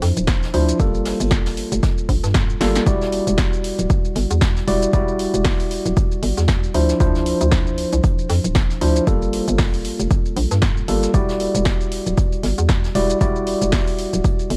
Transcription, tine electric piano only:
0.00 0.51 F3 loud
0.00 0.51 D4 medium
0.00 0.51 E4 medium
0.00 0.51 C5 loud
0.54 0.77 F3 medium
0.54 0.77 D4 medium
0.54 0.77 E4 medium
0.54 0.77 C5 loud
0.80 2.58 G3 medium
0.80 2.58 A#3 medium
0.80 2.58 F4 medium
0.80 2.58 A4 loud
2.61 2.84 G3 medium
2.61 2.84 A#3 medium
2.61 2.84 F4 medium
2.61 2.84 A4 loud
2.86 4.65 G3 medium
2.86 4.65 E4 medium
2.86 4.65 F#4 medium
2.86 4.65 D5 loud
4.67 4.91 G3 medium
4.67 4.91 E4 medium
4.67 4.91 F#4 medium
4.67 4.91 D5 loud
4.93 6.72 G3 medium
4.93 6.72 E4 medium
4.93 6.72 F#4 medium
4.93 6.72 D5 loud
6.74 6.98 F3 medium
6.74 6.98 D4 medium
6.74 6.98 E4 medium
6.74 6.98 C5 loud
7.00 8.79 F3 loud
7.00 8.79 D4 medium
7.00 8.79 E4 medium
7.00 8.79 C5 loud
8.81 9.05 F3 medium
8.81 9.05 D4 medium
8.81 9.05 E4 medium
8.81 9.05 C5 loud
9.07 10.86 G3 loud
9.07 10.86 A#3 medium
9.07 10.86 F4 medium
9.07 10.86 A4 loud
10.88 11.11 G3 medium
10.88 11.11 A#3 medium
10.88 11.11 F4 medium
10.88 11.12 A4 medium
11.14 12.92 G3 medium
11.14 12.92 E4 medium
11.14 12.93 F#4 medium
11.14 12.93 D5 loud
12.95 13.18 G3 medium
12.95 13.18 E4 medium
12.95 13.18 F#4 medium
12.95 13.18 D5 loud
13.21 14.57 G3 loud
13.21 14.57 E4 medium
13.21 14.57 F#4 medium
13.21 14.57 D5 loud

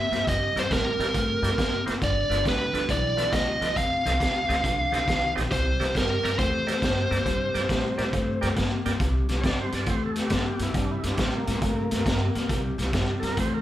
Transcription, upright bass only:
0.11 0.22 G2 medium
0.27 0.48 G2 medium
0.56 0.66 G2 medium
0.71 0.91 A2 medium
0.99 1.09 A2 medium
1.15 1.35 G2 medium
1.42 1.53 G2 medium
1.58 1.79 G2 medium
1.85 1.96 F#1 medium
2.02 2.22 G1 medium
2.29 2.40 G1 medium
2.46 2.66 D2 medium
2.73 2.84 D2 medium
2.89 3.20 B1 medium
3.33 3.53 D2 medium
3.61 3.71 D2 medium
3.77 3.97 F1 medium
4.05 4.16 C2 medium
4.20 4.41 D2 medium
4.49 4.59 D2 medium
4.64 4.84 C2 medium
4.92 5.02 C2 medium
5.08 5.28 C2 medium
5.36 5.47 A#1 medium
5.52 5.72 C2 medium
5.80 5.90 C2 medium
5.95 6.15 G2 medium
6.23 6.34 G2 medium
6.38 6.69 E2 medium
6.82 7.03 G2 medium
7.11 7.21 G2 medium
7.26 7.46 G2 medium
7.54 7.65 G2 medium
7.69 7.90 A2 medium
7.98 8.09 A2 medium
8.13 8.34 G2 medium
8.43 8.53 G2 medium
8.57 8.77 G2 medium
8.86 8.96 G2 medium
9.00 9.21 C2 medium
9.29 9.40 C2 medium
9.44 9.64 G2 medium
9.72 9.83 G2 medium
9.87 10.18 E2 medium
10.31 10.52 G2 medium
10.59 10.70 G2 medium
10.74 10.95 G2 medium
11.04 11.14 G2 medium
11.18 11.39 A2 medium
11.48 11.58 A2 medium
11.62 11.83 G2 medium
11.91 12.02 G2 medium
12.06 12.27 G2 medium
12.35 12.46 G2 medium
12.49 12.70 C2 medium
12.78 12.89 C2 medium
12.93 13.14 G2 medium
13.22 13.33 G2 medium
13.38 13.62 E2 medium

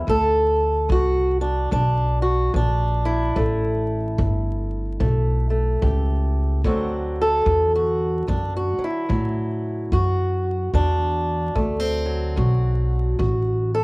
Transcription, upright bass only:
0.08 0.88 D2 medium
0.89 1.69 C2 medium
1.72 2.52 B1 medium
2.54 3.34 A#1 medium
3.36 4.16 A1 medium
4.19 4.98 G1 medium
5.00 5.80 B1 medium
5.82 6.62 C#2 medium
6.64 7.44 D2 medium
7.46 8.26 E2 medium
8.29 8.75 F#2 medium
8.78 muted upright bass stroke soft
9.09 9.89 A2 medium
9.92 10.71 F#2 medium
10.74 11.53 E2 medium
11.55 12.35 D2 medium
12.37 13.17 B1 medium
13.19 13.84 A1 medium

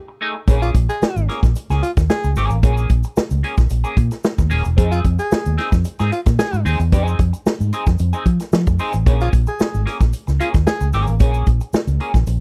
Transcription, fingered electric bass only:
0.48 0.70 A#1 medium
0.75 0.86 A#1 loud
1.02 muted fingered electric bass stroke soft
1.16 1.26 G#1 medium
1.43 1.53 A#1 medium
1.70 1.80 C#2 medium
1.97 2.07 D#2 loud
2.24 2.34 C#2 medium
2.36 2.48 G#1 medium
2.51 2.61 A1 medium
2.63 2.85 A#1 loud
2.90 3.01 A#1 loud
3.17 muted fingered electric bass stroke soft
3.31 3.41 C#2 medium
3.58 3.68 A#1 medium
3.71 3.82 A#1 medium
3.97 4.09 A#2 loud
4.39 4.49 D#2 medium
4.51 4.63 D#1 medium
4.66 4.76 E1 medium
4.78 5.00 F2 loud
5.05 5.16 F2 loud
5.32 muted fingered electric bass stroke medium
5.46 5.56 D#2 medium
5.73 5.83 F2 loud
6.00 6.10 G#2 medium
6.27 6.37 A#2 medium
6.53 6.63 G#2 medium
6.66 6.77 D#2 medium
6.80 6.93 E2 medium
6.93 7.14 F2 loud
7.19 7.31 F2 loud
7.46 muted fingered electric bass stroke medium
7.60 7.70 G#2 loud
7.87 7.97 F2 medium
8.00 8.11 F2 loud
8.26 8.37 F3 medium
8.53 8.64 F3 loud
8.67 8.77 F2 medium
8.94 9.04 A1 medium
9.06 9.28 A#1 medium
9.33 9.45 A#1 loud
9.60 muted fingered electric bass stroke soft
9.74 9.84 G#1 medium
10.01 10.11 A#1 medium
10.28 10.38 C#2 medium
10.55 10.64 D#2 loud
10.81 10.91 C#2 medium
10.93 11.05 G#1 loud
11.08 11.18 A1 medium
11.21 11.42 A#1 loud
11.47 11.58 A#1 loud
11.73 muted fingered electric bass stroke soft
11.87 11.97 C#2 medium
12.15 12.24 A#1 loud
12.27 12.38 A#1 loud

